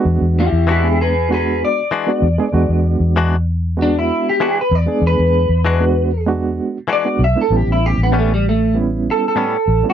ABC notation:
X:1
M:4/4
L:1/16
Q:1/4=97
K:Emix
V:1 name="Clean electric guitar"
z2 [E=G]2 [EG]2 [^GB]2 [GB]2 d6- | d6 z2 D E2 =G2 B d2 | B8 z4 d2 e A | =G E G B, A, =G, A,2 z2 A A4 F |]
V:2 name="Reed electric piano"
[G,B,DF]3 z2 [G,B,DG]2 z [G,B,DF]3 z2 [G,B,DF] z [G,B,DG] | [G,B,DF]4- [G,B,DF] z3 [G,B,DF]4 z3 [G,B,DG]- | [G,B,DG]3 z2 [G,B,DF]2 z [G,B,DF]3 z2 [G,B,DF] z [G,B,DE] | [=G,B,CE]4- [G,B,CE] z3 [G,B,CE]4 z3 [G,B,CE] |]
V:3 name="Clean electric guitar"
z4 [E,G,DF]2 z6 [E,G,DF]2 z2 | z4 [E,G,DF]2 z6 [E,G,DF]2 z2 | z4 [E,G,DF]2 z6 [E,G,DF]2 z2 | z4 [A,,=G,B,C]2 z6 [A,,G,B,C]2 z2 |]
V:4 name="Fingered electric bass" clef=bass
E,, E,,2 E,,8 z3 E,, z | E,, E,,2 E,,8 z3 E,, z | E,, E,,2 E,,8 z3 B,,, z | A,,, A,,,2 A,,,8 z3 A,,, z |]